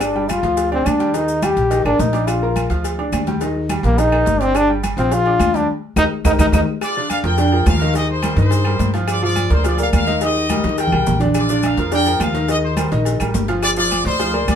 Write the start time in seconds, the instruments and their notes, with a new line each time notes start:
Already playing: upright bass G1, upright piano D4 D5 D6
0.00 trombone D4, cowbell, high conga, low agogo, claves, maracas
0.15 upright piano G3 G4 G5, high conga
0.29 trombone F4, cowbell, high conga, low timbale, low agogo, claves, maracas
0.43 upright bass D2, upright piano F3 F4 F5, cowbell, high conga, maracas
0.57 cowbell, high conga, low agogo, maracas
0.72 trombone C4, upright piano D4 D5 D6, high conga, low agogo
0.86 upright bass D#2, trombone D4, cowbell, high conga, low timbale, low agogo, claves, maracas
0.99 upright piano G3 G4 G5, cowbell, maracas
1.14 upright piano D#3 D#4 D#5, trombone D#4, cowbell, high conga, low agogo, maracas
1.28 high conga, maracas
1.42 upright piano G3 G4 G5, trombone G4, cowbell, high conga, low timbale, low agogo, claves, maracas
1.57 upright bass A#1, cowbell, maracas
1.71 upright piano D#3 D#4 D#5, cowbell, high conga, low agogo, maracas
1.85 upright bass A1, upright piano A#3 A#4 A#5, trombone D4, high conga, low agogo, claves
1.99 upright bass A#1, trombone D#4, cowbell, high conga, low timbale, maracas
2.13 upright piano D4 D5 D6, cowbell, high conga, low agogo, maracas
2.27 trombone F4, cowbell, high conga, low agogo, claves, maracas
2.42 upright piano A#3 A#4 A#5, high conga
2.56 cowbell, high conga, low timbale, low agogo, claves, maracas
2.70 upright bass D2, upright piano F3 F4 F5, cowbell, high conga, maracas
2.84 cowbell, high conga, low agogo, maracas
2.99 upright piano D4 D5 D6, high conga, low agogo
3.12 upright bass D#2, cowbell, high conga, low timbale, low agogo, claves, maracas
3.27 upright piano G3 G4 G5, cowbell, high conga, maracas
3.41 upright piano D#3 D#4 D#5, cowbell, high conga, low agogo, maracas
3.56 high conga
3.69 upright piano G3 G4 G5, cowbell, high conga, low timbale, low agogo, claves, maracas
3.83 upright bass A#1, trombone A#3, cowbell, maracas
3.98 upright piano D#3 D#4 D#5, trombone D#4, cowbell, high conga, low agogo, maracas
4.12 upright piano A#3 A#4 A#5, high conga, low agogo, claves
4.26 upright bass G1, cowbell, high conga, low timbale, maracas
4.41 trombone C4, upright piano D4 D5 D6, cowbell, high conga, low agogo, maracas
4.55 trombone D4, cowbell, high conga, low agogo, claves, maracas
4.69 upright piano G3 G4 G5, high conga
4.83 cowbell, high conga, low timbale, low agogo, claves, maracas
4.97 upright bass A#1, upright piano F3 F4 F5, trombone C4, cowbell, high conga, maracas
5.11 trombone F4, cowbell, high conga, low agogo, maracas
5.26 upright piano D4 D5 D6, high conga, low agogo
5.40 upright bass D#2, cowbell, high conga, low timbale, low agogo, claves, maracas
5.54 upright piano G3 G4 G5, trombone D4, cowbell, high conga, maracas
5.96 upright bass D#2, upright piano D#4 G4 A#4, trombone D#4, cowbell, high conga, high timbale, claves, maracas
6.24 upright bass D#2, upright piano D#4 G4 A#4, trombone D#4, cowbell, high conga, high timbale, claves, maracas
6.38 upright bass D#2, upright piano D#4 G4 A#4, trombone D#4, cowbell, high conga, high timbale, claves, maracas
6.52 upright bass D#2, upright piano D#4 G4 A#4, trombone D#4, cowbell, high conga, high timbale, claves, maracas
6.81 trumpet section F4 D5, cowbell, high conga, low agogo, claves, maracas
6.97 upright piano D3 D4 D5, high conga
7.10 trumpet section A#4 F5, cowbell, high conga, low timbale, low agogo, claves, maracas
7.24 upright bass F2, upright piano F3 F4 A#4, trumpet section A#4 G5, cowbell, high conga, maracas
7.38 upright piano D3 D4 D5, cowbell, high conga, low agogo, maracas
7.52 upright piano F3 F4 A#4, high conga, low agogo
7.66 upright bass D#2, trumpet section A#4 F5, cowbell, high conga, low timbale, low agogo, claves, maracas
7.80 upright piano D#3 D#4 D#5, cowbell, maracas
7.94 upright piano D#3 D#4 D#5, trumpet section G4 D#5, cowbell, high conga, low agogo, maracas
8.10 trumpet section D#4 C5, high conga
8.22 upright piano G3 G4 A#4, cowbell, high conga, low timbale, low agogo, claves, maracas
8.36 upright bass G2, upright piano D#3 D#4 D#5, trumpet section D#4 C5, cowbell, maracas
8.51 cowbell, high conga, low agogo, maracas
8.65 upright piano G3 G4 A#4, high conga, low agogo, claves
8.79 upright bass G2, cowbell, high conga, low timbale, maracas
8.94 upright piano F3 F4 F5, cowbell, high conga, low agogo, maracas
9.08 trumpet section F4 D5, cowbell, high conga, low agogo, claves, maracas
9.23 upright piano F3 F4 F5, trumpet section F4 D5, high conga
9.36 cowbell, high conga, low timbale, low agogo, claves, maracas
9.50 upright bass D2, upright piano A#3 A#4 D5, trumpet section D#4 C5, cowbell, high conga, maracas
9.64 upright piano F3 F4 F5, trumpet section F4 D5, cowbell, high conga, low agogo, maracas
9.78 upright piano A#3 A#4 D5, trumpet section A4 F5, high conga, low agogo, maracas
9.93 upright bass D#2, trumpet section A#4 F5, cowbell, high conga, low timbale, low agogo, claves, maracas
10.07 upright piano D#3 D#4 D#5, cowbell, high conga, maracas
10.21 upright piano D#3 D#4 D#5, trumpet section G4 D#5, cowbell, high conga, low agogo, maracas
10.36 high conga
10.49 upright piano G3 G4 A#4, cowbell, high conga, low timbale, low agogo, claves, maracas
10.63 upright bass D#2, upright piano D#3 D#4 D#5, cowbell, maracas
10.69 high conga
10.78 trumpet section A#4 G5, cowbell, low agogo, maracas
10.87 low conga
10.92 upright bass C2, upright piano G3 G4 A#4, low agogo, claves
11.06 upright bass A#1, cowbell, low conga, low timbale, maracas
11.20 upright piano D3 D4 D5, cowbell, low agogo, maracas
11.26 low conga
11.34 trumpet section F4 D5, cowbell, high conga, low agogo, claves, maracas
11.49 upright piano D3 D4 D5, high conga, maracas
11.63 trumpet section A#4 F5, cowbell, high conga, low timbale, low agogo, claves, maracas
11.77 upright bass F2, upright piano F3 F4 A#4, cowbell, high conga, maracas
11.92 upright piano D3 D4 D5, trumpet section A#4 G5, cowbell, high conga, low agogo, maracas
12.06 upright piano F3 F4 A#4, high conga, low agogo, maracas
12.20 upright bass D#2, trumpet section A#4 F5, cowbell, high conga, low timbale, low agogo, claves, maracas
12.34 upright piano D#3 D#4 D#5, cowbell, maracas
12.48 upright piano D#3 D#4 D#5, trumpet section G4 D#5, cowbell, high conga, low agogo, maracas
12.63 trumpet section D#4 C5, high conga
12.77 upright piano G3 G4 A#4, cowbell, high conga, low timbale, low agogo, claves, maracas
12.92 upright bass A#1, upright piano D#3 D#4 D#5, cowbell, maracas
13.05 cowbell, high conga, low agogo, maracas
13.20 upright bass A1, upright piano G3 G4 A#4, high conga, low agogo, claves, maracas
13.34 upright bass G1, cowbell, high conga, low timbale, maracas
13.48 upright piano F3 F4 F5, cowbell, low agogo, maracas
13.62 trumpet section F4 D5, cowbell, high conga, low agogo, claves, maracas
13.76 upright piano F3 F4 F5, trumpet section F4 D5, high conga, maracas
13.91 cowbell, high conga, low timbale, low agogo, claves, maracas
14.05 upright bass D2, upright piano A#3 A#4 D5, trumpet section D#4 C5, cowbell, high conga, maracas
14.19 upright piano F3 F4 F5, cowbell, high conga, low agogo, maracas
14.33 upright piano A#3 A#4 D5, high conga, low agogo
14.48 upright bass D#2, trumpet section F4 D5, cowbell, high conga, low timbale, low agogo, claves, maracas